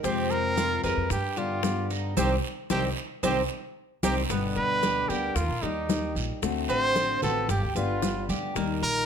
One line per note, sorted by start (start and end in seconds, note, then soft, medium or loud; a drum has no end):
0.03 0.80 F2 medium
0.03 0.83 C3 medium
0.03 0.83 F3 medium
0.03 0.83 G#3 medium
0.03 0.56 C4 medium
0.03 0.83 C4 medium
0.03 0.32 G4 loud
0.03 0.83 G4 medium
0.03 high bongo medium
0.03 high conga soft
0.03 long guiro medium
0.03 maracas medium
0.31 0.83 A#4 loud
0.31 high conga soft
0.31 maracas soft
0.57 0.83 F4 medium
0.57 high bongo medium
0.57 high conga medium
0.57 short guiro medium
0.57 maracas medium
0.83 0.96 F2 medium
0.83 1.10 F3 medium
0.83 1.10 G#3 medium
0.83 1.10 C4 medium
0.83 1.09 G4 medium
0.83 1.09 A#4 medium
0.83 1.36 B4 medium
0.83 high conga soft
0.83 short guiro medium
0.83 maracas soft
0.97 1.10 F2 medium
1.10 2.13 G2 loud
1.10 1.39 G4 medium
1.10 muted steel-string acoustic guitar stroke medium
1.10 high bongo medium
1.10 high conga soft
1.10 long guiro medium
1.10 maracas medium
1.36 1.62 D3 medium
1.36 1.63 G3 medium
1.36 1.63 B3 medium
1.36 1.91 F4 medium
1.36 1.62 G4 medium
1.36 1.89 G4 medium
1.36 high conga soft
1.36 maracas soft
1.63 2.16 D3 soft
1.63 2.16 G3 soft
1.63 2.16 B3 medium
1.63 2.17 G4 medium
1.63 high bongo medium
1.63 low bongo medium
1.63 high conga medium
1.63 short guiro medium
1.63 maracas medium
1.90 2.16 D#4 medium
1.90 high conga soft
1.90 short guiro medium
1.90 maracas soft
2.17 2.37 C2 medium
2.17 2.34 D#3 medium
2.17 2.34 G3 medium
2.17 2.34 C4 medium
2.17 2.34 D#4 medium
2.17 2.34 G4 medium
2.17 2.31 G4 medium
2.17 low bongo medium
2.17 high conga loud
2.17 long guiro loud
2.17 maracas medium
2.70 2.90 C2 medium
2.70 2.88 D#3 medium
2.70 2.88 G3 medium
2.70 2.87 C4 medium
2.70 2.88 C4 medium
2.70 2.87 D#4 medium
2.70 2.84 G4 medium
2.70 2.88 G4 medium
2.70 low bongo loud
2.70 high conga loud
2.70 long guiro medium
2.70 maracas medium
3.23 3.43 C2 medium
3.23 3.41 D#3 medium
3.23 3.41 G3 medium
3.23 3.41 C4 medium
3.23 3.41 D#4 medium
3.23 3.41 G4 medium
3.23 3.37 G4 medium
3.23 low bongo medium
3.23 high conga loud
3.23 long guiro medium
3.23 maracas medium
4.03 4.23 C2 medium
4.03 4.20 D#3 medium
4.03 4.21 G3 medium
4.03 4.20 C4 medium
4.03 4.21 C4 medium
4.03 4.21 D#4 medium
4.03 4.21 G4 medium
4.03 4.16 G4 medium
4.03 low bongo medium
4.03 high conga loud
4.03 long guiro loud
4.03 maracas loud
4.30 4.55 G1 medium
4.30 5.09 B2 medium
4.30 5.09 D3 medium
4.30 5.09 G3 medium
4.30 4.82 B3 medium
4.30 5.10 B3 medium
4.30 5.09 G4 medium
4.30 high bongo medium
4.30 high conga soft
4.30 long guiro medium
4.30 maracas medium
4.56 5.07 D2 medium
4.56 5.10 B4 loud
4.56 high bongo soft
4.56 high conga soft
4.83 5.09 G4 medium
4.83 high bongo medium
4.83 high conga medium
4.83 short guiro medium
4.83 maracas medium
5.09 5.35 D2 medium
5.09 5.36 D3 medium
5.09 5.35 G3 medium
5.09 5.36 B3 medium
5.09 5.37 G4 medium
5.09 5.35 G4 medium
5.09 5.62 A#4 medium
5.09 high bongo soft
5.09 high conga soft
5.09 short guiro medium
5.09 maracas soft
5.35 5.48 D#2 loud
5.35 5.63 F4 medium
5.35 muted steel-string acoustic guitar stroke medium
5.35 high bongo medium
5.35 high conga soft
5.35 long guiro medium
5.35 maracas medium
5.49 5.61 A#1 medium
5.62 6.13 D#2 medium
5.62 5.88 G3 medium
5.62 5.89 A#3 medium
5.62 6.16 D#4 medium
5.62 5.89 D#4 medium
5.62 5.89 G4 medium
5.62 6.15 G4 medium
5.62 high bongo soft
5.62 high conga soft
5.89 6.42 G3 soft
5.89 6.42 A#3 soft
5.89 6.42 D#4 medium
5.89 6.43 G4 soft
5.89 high bongo soft
5.89 low bongo medium
5.89 high conga medium
5.89 short guiro medium
5.89 maracas medium
6.15 6.28 A#1 medium
6.15 high conga soft
6.15 short guiro medium
6.15 maracas soft
6.42 6.68 D2 medium
6.42 7.21 D3 medium
6.42 7.22 A3 medium
6.42 7.22 C4 medium
6.42 7.21 F#4 medium
6.42 high bongo medium
6.42 high conga soft
6.42 long guiro medium
6.42 maracas medium
6.69 7.20 A1 medium
6.69 7.21 C4 medium
6.69 7.19 C5 loud
6.69 high bongo soft
6.69 high conga soft
6.69 maracas medium
6.96 high bongo medium
6.96 high conga medium
6.96 short guiro medium
6.96 maracas medium
7.22 7.48 A1 medium
7.22 7.49 A3 medium
7.22 7.49 C4 medium
7.22 7.48 F#4 medium
7.22 7.48 A4 medium
7.22 7.49 B4 medium
7.22 high bongo soft
7.22 high conga soft
7.22 low conga medium
7.22 short guiro medium
7.22 maracas soft
7.49 7.62 G1 loud
7.49 7.74 G4 medium
7.49 7.76 G4 medium
7.49 high bongo medium
7.49 high conga soft
7.49 long guiro medium
7.49 maracas medium
7.62 7.75 D2 medium
7.75 8.26 G1 medium
7.75 8.02 D3 medium
7.75 8.02 G3 medium
7.75 8.02 B3 medium
7.75 8.26 F4 medium
7.75 8.02 G4 medium
7.75 8.28 B4 medium
7.75 high bongo soft
7.75 high conga soft
7.75 maracas medium
8.02 8.55 D3 medium
8.02 8.55 G3 medium
8.02 8.56 B3 medium
8.02 8.56 G4 medium
8.02 high bongo soft
8.02 low bongo medium
8.02 high conga medium
8.02 short guiro medium
8.02 maracas medium
8.29 8.42 D2 medium
8.29 8.55 G4 medium
8.29 high conga medium
8.29 short guiro medium
8.29 maracas soft
8.55 8.81 D#2 medium
8.55 9.06 D#3 medium
8.55 9.06 G3 medium
8.55 9.06 A#3 medium
8.55 9.06 D#4 medium
8.55 9.06 G4 medium
8.55 high bongo medium
8.55 high conga soft
8.55 long guiro medium
8.55 maracas medium
8.82 9.06 A#1 medium
8.82 9.06 A#4 loud
8.82 high bongo soft
8.82 high conga soft